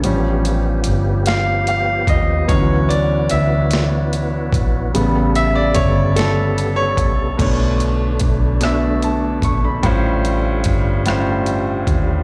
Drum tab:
CC |------|------|------|x-----|
HH |xxxxxx|xxxxxx|xxxxxx|xxxxxx|
SD |---o--|---o--|---o--|---r--|
BD |-----o|o----o|--o--o|o-o--o|

CC |------|
HH |xxxxxx|
SD |---r--|
BD |o-o--o|